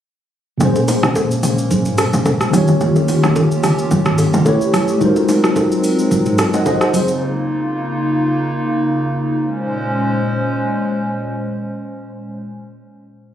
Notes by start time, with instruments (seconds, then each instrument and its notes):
0.58 log drum bass A#1, tine electric piano A#2 A#3 C#4, analog synth pad G#3 A#3 C#4, kick, low conga, shaker
0.63 tine electric piano G#4 C5
0.76 high bongo, shaker
0.88 open hi-hat, low bongo, shaker
1.03 log drum bass A#1, cross-stick, low bongo, shaker
1.15 kick, high bongo, shaker
1.31 shaker
1.43 log drum bass A#1, open hi-hat, shaker
1.58 shaker
1.71 log drum bass G#1, kick, low conga, shaker
1.85 mid tom, shaker
1.98 cross-stick, open hi-hat, high bongo, shaker
2.13 log drum bass A#1, low bongo, shaker
2.26 log drum bass A#1, kick, high bongo, shaker
2.41 cross-stick, shaker
2.50 log drum bass D#2, tine electric piano D#3 A#3 F4, analog synth pad D#3 F4 G4, open hi-hat, low conga, shaker
2.56 tine electric piano G4 C#5
2.68 log drum bass C#2, shaker
2.81 log drum bass D#2, kick, low conga, shaker
2.96 high bongo, shaker
3.08 open hi-hat, low bongo, shaker
3.23 log drum bass D#2, cross-stick, low bongo, shaker
3.36 kick, high bongo, shaker
3.51 shaker
3.63 log drum bass C#2, cross-stick, open hi-hat, shaker
3.78 shaker
3.91 log drum bass D#2, kick, low conga, shaker
4.05 cross-stick, mid tom, shaker
4.18 open hi-hat, high bongo, shaker
4.33 log drum bass C#2, low bongo, shaker
4.45 tine electric piano A3 E4 G4 B4 C#5, analog synth pad A3, kick, high bongo, shaker
4.61 shaker
4.73 cross-stick, open hi-hat, low conga, shaker
4.88 shaker
4.98 analog synth pad F#3 G#3 C4, tine electric piano G#3 D#4 F4, kick, low conga, shaker
5.02 tine electric piano F#4 A#4 C5
5.16 high bongo, shaker
5.29 open hi-hat, low bongo, shaker
5.44 cross-stick, low bongo, shaker
5.56 kick, high bongo, shaker
5.72 shaker
5.84 open hi-hat, shaker
5.99 shaker
6.11 kick, low conga, shaker
6.26 mid tom, shaker
6.38 cross-stick, open hi-hat, high bongo, shaker
6.54 tine electric piano D#5 F#5, low bongo, shaker
6.66 tine electric piano C5 D#5, kick, high bongo, shaker
6.81 tine electric piano G#4 C5, cross-stick, shaker
6.93 analog synth pad C#3 A#3 D#4 F4, open hi-hat, low conga, shaker
7.08 shaker
9.41 analog synth pad A#2 G#3 C#4 C5